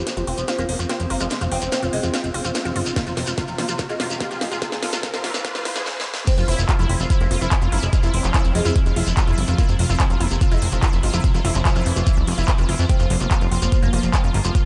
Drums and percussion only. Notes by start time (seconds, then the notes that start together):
0.07 snare, closed hi-hat, shekere
0.17 closed hi-hat, shekere
0.27 open hi-hat
0.38 closed hi-hat, shekere
0.48 snare, closed hi-hat, shekere
0.58 closed hi-hat, shekere
0.69 open hi-hat
0.79 closed hi-hat, shekere
0.89 snare, closed hi-hat, shekere
1.00 closed hi-hat, shekere
1.10 open hi-hat
1.20 closed hi-hat, shekere
1.30 snare, closed hi-hat, shekere
1.41 closed hi-hat, shekere
1.52 open hi-hat
1.61 shekere
1.72 snare, closed hi-hat, shekere
1.83 closed hi-hat, shekere
1.93 open hi-hat
2.03 closed hi-hat, shekere
2.14 snare, closed hi-hat, shekere
2.24 closed hi-hat, shekere
2.34 open hi-hat
2.45 shekere
2.55 snare, closed hi-hat, shekere
2.65 closed hi-hat, shekere
2.76 open hi-hat
2.86 closed hi-hat, shekere
2.96 kick, snare, closed hi-hat, shekere
3.07 closed hi-hat, shekere
3.17 snare, open hi-hat
3.27 closed hi-hat, shekere
3.38 kick, snare, closed hi-hat, shekere
3.47 closed hi-hat, shekere
3.58 snare, open hi-hat
3.68 closed hi-hat, shekere
3.79 kick, snare, closed hi-hat, shekere
3.89 closed hi-hat, shekere
4.00 snare, open hi-hat
4.10 closed hi-hat, shekere
4.21 kick, snare, closed hi-hat, shekere
4.31 closed hi-hat, shekere
4.41 snare, open hi-hat
4.52 closed hi-hat, shekere
4.62 kick, snare, closed hi-hat, shekere
4.72 snare, closed hi-hat, shekere
4.83 snare, open hi-hat
4.93 snare, closed hi-hat, shekere
5.03 kick, snare, closed hi-hat, shekere
5.14 snare, closed hi-hat, shekere
5.24 snare, open hi-hat
5.34 snare, shekere
5.45 kick, snare, closed hi-hat, shekere
5.54 snare, closed hi-hat, shekere
5.65 snare, open hi-hat
5.75 snare, closed hi-hat, shekere
5.86 snare
6.00 snare
6.14 snare
6.27 kick, closed hi-hat, crash, shekere
6.38 closed hi-hat, shekere
6.48 open hi-hat
6.59 shekere
6.69 kick, clap, closed hi-hat, shekere
6.79 closed hi-hat, shekere
6.89 open hi-hat
7.00 shekere
7.10 kick, closed hi-hat, shekere
7.21 closed hi-hat, shekere
7.31 open hi-hat
7.41 closed hi-hat, shekere
7.51 kick, clap, closed hi-hat, shekere
7.62 closed hi-hat, shekere
7.72 open hi-hat
7.82 closed hi-hat, shekere
7.93 kick, closed hi-hat, shekere
8.03 closed hi-hat, shekere
8.14 open hi-hat
8.24 clap, shekere
8.34 kick, clap, closed hi-hat, shekere
8.44 closed hi-hat, shekere
8.55 open hi-hat
8.65 closed hi-hat, shekere
8.76 kick, closed hi-hat, shekere
8.86 closed hi-hat, shekere
8.96 open hi-hat
9.07 shekere
9.17 kick, clap, closed hi-hat, shekere
9.27 closed hi-hat, shekere
9.38 open hi-hat
9.47 shekere
9.58 kick, closed hi-hat, shekere
9.69 closed hi-hat, shekere
9.79 open hi-hat
9.89 closed hi-hat, shekere
10.00 kick, clap, closed hi-hat, shekere
10.10 closed hi-hat, shekere
10.20 open hi-hat
10.31 closed hi-hat, shekere
10.41 kick, closed hi-hat, shekere
10.52 closed hi-hat, shekere
10.62 open hi-hat
10.72 closed hi-hat, shekere
10.82 kick, clap, closed hi-hat, shekere
10.93 closed hi-hat, shekere
11.03 open hi-hat
11.13 shekere
11.24 kick, closed hi-hat, shekere
11.34 closed hi-hat, shekere
11.45 open hi-hat
11.55 clap, shekere
11.65 kick, clap, closed hi-hat, shekere
11.76 closed hi-hat, shekere
11.86 open hi-hat
11.96 closed hi-hat, shekere
12.07 kick, closed hi-hat, shekere
12.17 closed hi-hat, shekere
12.27 open hi-hat
12.38 closed hi-hat, shekere
12.48 kick, clap, closed hi-hat, shekere
12.58 closed hi-hat, shekere
12.69 open hi-hat
12.79 closed hi-hat, shekere
12.89 kick, closed hi-hat, shekere
12.99 closed hi-hat, shekere
13.10 open hi-hat
13.20 shekere
13.31 kick, clap, closed hi-hat, shekere
13.41 closed hi-hat, shekere
13.52 open hi-hat
13.62 closed hi-hat, shekere
13.72 kick, closed hi-hat, shekere
13.82 closed hi-hat, shekere
13.93 open hi-hat
14.03 shekere
14.13 kick, clap, closed hi-hat, shekere
14.24 closed hi-hat, shekere
14.34 open hi-hat
14.44 shekere
14.55 kick, closed hi-hat, shekere